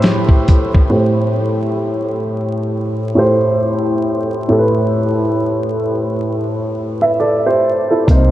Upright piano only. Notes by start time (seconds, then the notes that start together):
Already playing: A2 A3 G4 B4 C5
0.90 A2 A3 G4 C5
3.15 A2 A3 G4 C5
4.48 A2 A3 G4 A4
4.59 B4
7.02 B4 E5
7.20 A4 D5
7.46 G4 C5
7.90 E4 A4
8.07 C3 A#3 D#4 C5